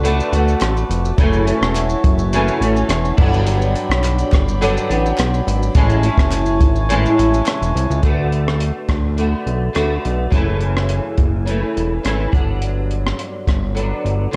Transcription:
Already playing: C#2 F#4 B4 D5 A5
0.04 D3 A3 B3 F#4, closed hi-hat, shaker
0.20 shaker
0.32 D2 A3 B3 F#4, closed hi-hat, shaker
0.48 shaker
0.61 A1, cross-stick, clap, closed hi-hat, shaker
0.77 shaker
0.90 F1, closed hi-hat, shaker
1.05 shaker
1.16 F#1 F#2 C#3 E3 F#4 C#5 E5, kick, closed hi-hat, shaker
1.20 A3 C#4
1.33 shaker
1.46 E3 A3 C#4, closed hi-hat, shaker
1.61 E1, cross-stick, shaker
1.75 clap, closed hi-hat, shaker
1.89 shaker
2.04 F#1, kick, closed hi-hat, shaker
2.18 shaker
2.33 F#2 C#3 E3 A3 C#4, closed hi-hat, shaker
2.48 shaker
2.61 A1 E3 A3 C#4, closed hi-hat, shaker
2.76 shaker
2.89 E1, cross-stick, clap, closed hi-hat, shaker
3.05 shaker
3.17 G1 F#3 B3 D4 D5 G5 B5, kick, crash
3.21 G2 D3
3.33 shaker
3.46 closed hi-hat, shaker
3.61 shaker
3.75 closed hi-hat, shaker
3.89 B1, cross-stick, shaker
4.04 clap, closed hi-hat, shaker
4.18 shaker
4.32 G1, kick, cross-stick, clap, closed hi-hat, shaker
4.48 shaker
4.61 G2 D3 F#3 B3 D4, closed hi-hat, shaker
4.77 shaker
4.89 A1 F#3 B3 D4, closed hi-hat, shaker
5.06 shaker
5.18 B1, cross-stick, clap, closed hi-hat, shaker
5.34 shaker
5.47 G#1, closed hi-hat, shaker
5.63 shaker
5.75 A1 A2 E3 G#3 C#4 E4 C#5 G#5 A5, kick, closed hi-hat, shaker
5.89 shaker
6.03 G#3 C#4 E4, closed hi-hat, shaker
6.17 F#1, kick, cross-stick, shaker
6.31 clap, closed hi-hat, shaker
6.46 shaker
6.61 G#1, kick, closed hi-hat, shaker
6.76 shaker
6.89 A2 E3 G#3 C#4 E4, closed hi-hat, shaker
7.06 shaker
7.17 A1 C#4 E4, closed hi-hat, shaker
7.21 G#3
7.34 shaker
7.46 cross-stick, clap, closed hi-hat, shaker
7.61 E1, shaker
7.75 C2, closed hi-hat, shaker
7.90 C#2, shaker
8.03 D2 D3 A3 B3, kick, closed hi-hat
8.08 F#4
8.32 closed hi-hat
8.48 cross-stick
8.60 closed hi-hat
8.89 D2, kick, cross-stick, closed hi-hat
9.17 D3 A3 B3 F#4, closed hi-hat
9.46 B1, closed hi-hat
9.73 D2 D3 A3 B3 F#4, cross-stick, closed hi-hat
10.05 B1, closed hi-hat
10.30 F#1 F#2 C#3 E3, kick, closed hi-hat
10.35 A3 E4
10.61 closed hi-hat
10.77 cross-stick
10.89 closed hi-hat
11.18 F#1, kick, closed hi-hat
11.46 C#3 E3 A3 E4, closed hi-hat
11.77 E1, closed hi-hat
12.03 G#1 C#3 E3 A3 E4, cross-stick, closed hi-hat
12.32 G1 F#3 B3 D4, kick, closed hi-hat
12.36 G2 D3
12.62 closed hi-hat
12.91 closed hi-hat
13.06 cross-stick
13.19 closed hi-hat
13.47 G1, kick, cross-stick, closed hi-hat
13.74 D3 F#3 B3 D4, closed hi-hat
14.05 G1, closed hi-hat
14.31 D3 F#3

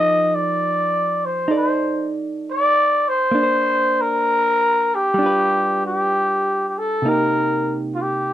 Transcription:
Already playing: F3 D#4 A4 D#5
0.35 D5
1.25 C5
1.48 D#4 A4 D5
1.57 C5
2.51 D5
3.09 C5
3.31 A#3 D4
3.43 C5
4.01 A#4
4.95 G4
5.14 G3
5.19 D4
5.23 F4 B4
5.86 G4
6.68 G4
6.78 A4
7.02 C3 A#3 D#4
7.08 G4 A#4
7.95 F4
8.02 G4

